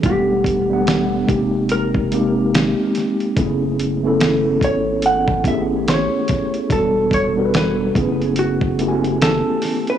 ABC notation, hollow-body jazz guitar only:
X:1
M:4/4
L:1/16
Q:"Swing 16ths" 1/4=72
K:E
V:1 name="Hollow-body jazz guitar"
=G8 _B6 z2 | z6 c2 f2 e2 c4 | A2 c2 B4 F4 A3 B |]